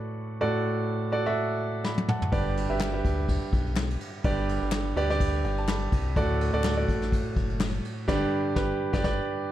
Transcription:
Already playing: A2 F#4 A4 B4 D5
0.41 A2 F#4 A4 D5
1.12 F#4 A4 D5
1.26 F#4 A4 E5
1.84 B5, snare
1.98 high tom
2.08 F#5 A5, mid tom
2.22 floor tom
2.32 G1 G2 D3 G4 B4 D5, kick, ride
2.57 ride
2.70 G1 G4 B4 E5
2.80 snare, clap, ride
2.93 G4 B4 E5
3.05 D2, kick, ride
3.29 kick, ride
3.53 B1, kick, ride
3.66 ride
3.76 snare, clap, ride
3.90 ride
4.00 ride
4.24 G1 G2 D3 G4 B4 D5, kick, ride
4.49 ride
4.62 G1
4.72 snare, clap, ride
4.96 D2 G4 B4 D5, ride
5.10 G4 B4 D5, snare
5.20 kick, ride
5.44 G1 G5, ride
5.57 A5, ride
5.68 B5, snare, clap, ride
5.92 C2, kick, ride
6.16 D2 A2 F#4 A4 D5, kick, ride
6.41 ride
6.53 D2 F#4 A4 D5
6.64 snare, clap, ride
6.77 F#4 A4 D5
6.88 A1, kick, ride
7.02 snare
7.12 kick, ride
7.36 F#1, kick, ride
7.50 ride
7.60 snare, clap, ride
7.74 ride
7.85 ride
8.08 G1 G2 D3 G4 B4 D5, kick, snare, crash
8.56 G1 G4 B4, kick, snare
8.93 G1 G4 B4 D5, kick, snare
9.04 G1 G4 B4 D5, kick, snare

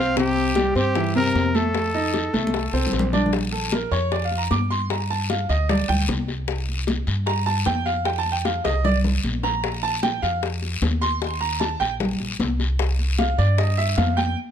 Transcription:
Already playing: C2 C4 C5
0.00 F5
0.16 C3 C4 G4, high bongo, high conga, long guiro
0.36 high conga
0.56 G3 G4, high bongo, high conga, short guiro
0.75 G2 C4 G4 C5, high bongo, high conga, short guiro
0.95 E3 E4, high bongo, high conga, long guiro
1.15 C3 C4 A#4, high bongo, high conga
1.35 F2, high bongo, low bongo, high conga, short guiro
1.55 A3 A4, high bongo, high conga, short guiro
1.75 high bongo, high conga, long guiro
1.94 D#4 D#5, high conga
2.14 high bongo, high conga, short guiro
2.33 C2 A3 A4, high bongo, high conga, short guiro
2.47 high conga
2.54 high bongo, long guiro
2.73 C2 C4 C5, high bongo
2.87 low conga
2.92 A#1, high bongo, low bongo, short guiro
2.99 low conga
3.13 D4 D5, high bongo, low conga, short guiro
3.26 low conga
3.33 high bongo, high conga, long guiro
3.52 A4, high conga
3.72 A#4, high bongo, high conga, short guiro
3.91 F2 C#5, high bongo, high conga, short guiro
4.11 D5, high bongo, high conga, long guiro
4.25 F5
4.31 high bongo, high conga
4.38 A#5
4.51 G2 D6, high bongo, low bongo, high conga, short guiro
4.70 C6, high bongo, short guiro
4.90 A#5, high bongo, high conga, long guiro
5.10 A5, high conga
5.30 F5, high bongo, high conga, short guiro
5.49 D2 D#5, high bongo, high conga, short guiro
5.69 D5, high bongo, high conga, low conga, long guiro
5.89 D2 G5, high bongo, high conga, low conga
6.09 C2, high bongo, low bongo, high conga, short guiro
6.28 high bongo, high conga, short guiro
6.48 high bongo, high conga, long guiro
6.69 high conga
6.87 high bongo, high conga, short guiro
7.07 G2, high bongo, high conga, short guiro
7.26 A#5, high bongo, high conga, long guiro
7.46 A5, high bongo, high conga
7.66 F2 G5, high bongo, low bongo, high conga, short guiro
7.86 F5, high bongo, short guiro
8.05 G5, high bongo, high conga, long guiro
8.19 A5
8.26 high conga
8.32 G5
8.45 F5, high bongo, high conga, short guiro
8.64 C2 D#5, high bongo, high conga, short guiro
8.84 D5, low bongo, high conga, low conga, long guiro
9.04 low bongo, high conga, low conga
9.24 A#1, high conga, short guiro
9.43 A#5, low bongo, high conga, short guiro
9.64 high bongo, high conga, long guiro
9.83 A5, high conga
10.03 G5, high bongo, high conga, short guiro
10.22 F2 F5, high bongo, high conga, short guiro
10.42 high bongo, high conga, long guiro
10.62 high bongo, high conga
10.82 D#2, high bongo, low bongo, high conga, short guiro
11.02 C6, high bongo, short guiro
11.22 high bongo, high conga, long guiro
11.41 A#5, high conga
11.60 A5, high bongo, high conga, short guiro
11.80 A#1 G5, high bongo, high conga, short guiro
12.00 high bongo, high conga, low conga, long guiro
12.20 A#1, high bongo, high conga
12.39 C2, high bongo, low bongo, high conga, short guiro
12.60 high bongo, high conga, short guiro
12.79 high bongo, high conga, long guiro
12.99 high conga
13.19 F5, high bongo, high conga, short guiro
13.38 G2 D5, high bongo, high conga, short guiro
13.58 D#5, high bongo, high conga, long guiro
13.78 E5, high bongo, high conga
13.97 F2 F5, high bongo, low bongo, high conga, short guiro
14.17 G5, high bongo, high conga, short guiro

